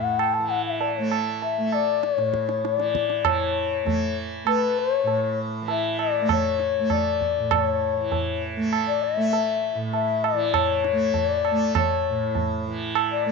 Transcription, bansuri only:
0.03 F#5
0.19 G5
0.34 A5
0.49 F#5
0.66 E5
0.80 D5
0.97 C#5
1.43 E5
1.74 D5
2.04 D5
2.15 C#5
2.65 C#5
2.76 D5
3.26 C#5
4.47 B4
4.79 C#5
5.70 E5
6.01 D5
6.32 C#5
6.92 D5
7.52 D5
7.63 C#5
8.88 D5
9.03 E5
9.94 E5
10.25 D5
10.55 C#5
11.17 C#5
11.28 D5
11.77 C#5
13.11 D5
13.25 D5

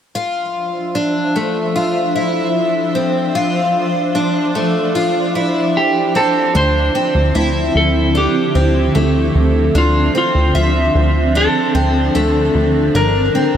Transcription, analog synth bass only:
6.55 D2
7.15 D2
7.35 D2
7.75 D2
8.55 D2
8.96 D2
9.35 D2
9.75 D2
10.35 D2
10.55 D2
10.95 D2
11.75 D2
12.15 D2
12.55 D2
12.95 G1

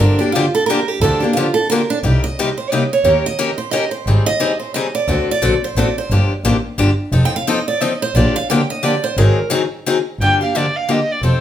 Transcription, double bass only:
1.01 D2
2.03 C2
3.04 D#2
4.07 G#1
5.08 D2
5.43 A#1
5.76 A1
6.10 G1
6.45 A1
6.79 G1
7.12 F1
8.15 A#1
9.18 G#1
10.19 G1
11.22 F1

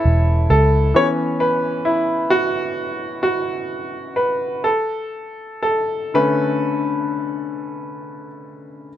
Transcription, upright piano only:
Already playing: E4 A4 B4 C#5
0.50 A4
0.94 E3 B3 C#4 C#5
1.40 B4
1.85 E4
2.30 F#4
3.23 F#4
4.16 B4
4.64 A4
5.62 A4
6.14 D3 A3 C#4 B4

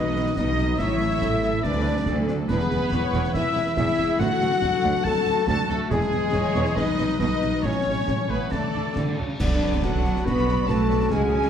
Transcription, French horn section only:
Already playing: D#4
0.38 D#4
0.80 E4
1.65 D4
2.49 B3
3.36 E4
3.77 E4
4.20 F#4
5.05 A4
5.48 A4
5.70 A3
5.90 G#3
6.78 D#4
7.20 D#4
7.65 C#4
8.30 B3
8.52 A3
9.41 D4
9.84 F#4
10.27 B4
10.70 A4
11.12 G#4

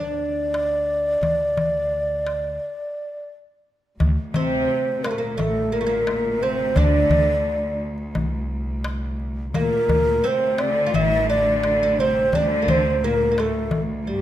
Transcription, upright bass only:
Already playing: D2
1.21 D2
4.00 D2
4.35 D2
5.37 A1
6.76 D2
7.09 D2
8.15 C2
9.54 D2
9.88 D2
10.94 A1
12.32 D2
12.66 D2
13.71 C2

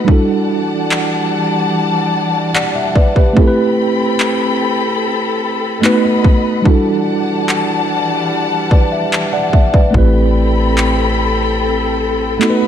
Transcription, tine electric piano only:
Already playing: A3 D#4
0.05 G3 D4 E4
0.10 F#4 A4
2.55 D5 F#5
2.76 E5
2.96 B4 D5
3.17 G4 B4
3.33 A3 C4 E4
3.39 G4 A4
3.47 B4
5.82 A3 B3 D#4 F#4 B4
6.62 G3 D4 E4
6.68 F#4 A4
8.72 B4 D5
8.92 E5
9.33 D5 F#5
9.53 E5
9.74 B4 D5
9.91 A3 C4 E4
9.96 G4 B4
12.39 A3 B3 D#4 F#4 A4
12.50 B4

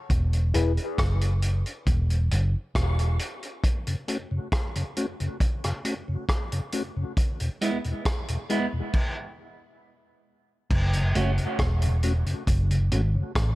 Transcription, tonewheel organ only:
3.87 F#2 C#3
4.08 A3 C#4 F#4
4.31 F#2 C#3
4.76 F#2 C#3
4.97 A3 C#4 F#4
5.20 F#2 C#3
5.64 F#2 C#3
5.85 A3 C#4 F#4
6.08 F#2 C#3
6.53 F#2 C#3
6.73 A3 C#4 F#4
6.97 F#2 C#3
7.41 E2 B2
7.61 G#3 B3 E4
7.85 E2 B2
8.29 E2 B2
8.50 G#3 B3 E4
8.73 E2 B2
10.94 F#2 C#3
11.15 A3 C#4 F#4
11.39 F#2 C#3
11.83 F#2 C#3
12.03 A3 C#4 F#4
12.26 F#2 C#3
12.71 F#2 C#3
12.92 A3 C#4 F#4
13.15 F#2 C#3

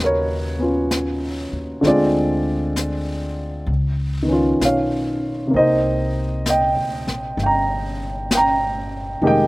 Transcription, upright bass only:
0.00 D#2
1.52 D#2
1.83 D2
3.66 C#2
4.60 B1
5.54 C2
6.77 D2
7.07 A#1
7.37 G1
9.22 F1

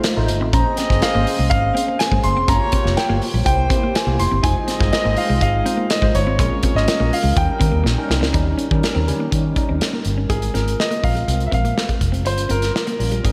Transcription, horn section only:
Already playing: C4 A4 F5
0.53 C4 G#4 D#5
2.48 A#3 G4 C#5
3.45 G3 E4 C5
4.43 C4 G#4 D#5
6.37 A#3 G#4 C#5
7.36 G3 D#4 A#4

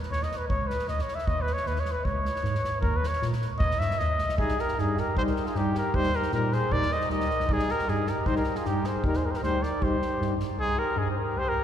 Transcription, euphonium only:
4.40 D#4
4.78 D#4
5.18 D#4
5.57 D#4
5.95 D#4
6.34 D#4
6.71 D#4
7.11 D#4
7.50 D#4
7.89 D#4
8.26 D#4
8.66 D#4
9.03 D#4
9.43 D#4
9.81 D#4
10.19 D#4

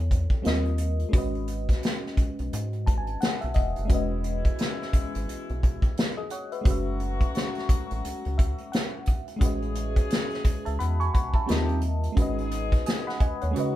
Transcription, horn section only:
3.90 E3 G#3 B3 E4
6.65 F#3 A3 C#4 F#4
9.41 G#3 C#4 E4 G#4
11.48 G3 C#4 D#4 G4
12.17 G#3 B3 D#4 G#4
13.55 F#3 B3 D#4 F#4

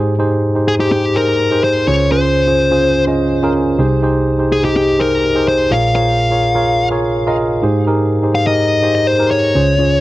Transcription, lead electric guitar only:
0.68 G#4
0.80 G4
0.92 G4
1.16 A#4
1.64 C5
1.88 C#5
2.12 C5
4.52 G#4
4.65 G4
4.76 G4
5.00 A#4
5.48 C5
5.72 F5
5.96 F5
8.35 F5
8.47 D#5
8.95 D#5
9.07 C5
9.31 C#5

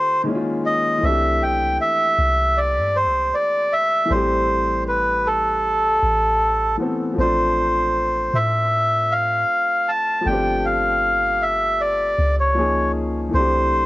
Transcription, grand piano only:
Already playing: D3 G3 A3 C4 F4
0.24 D#3 G#3 A#3 C#4
0.28 E4
0.35 F4
0.98 E3 A3
1.03 C4 D4
1.08 G4
4.05 E3 A3
4.10 G3 C4
4.15 G4
6.77 E3 A3 B3 C4
6.82 A4
7.13 F3 A3
7.18 C4 D4
7.23 F4
10.21 F3 A3
10.26 B3 D4
10.31 C4 G4
12.54 F3 A#3 C#4 D#4
12.59 G#4
13.29 E3 A3
13.34 C4 D4
13.39 G4

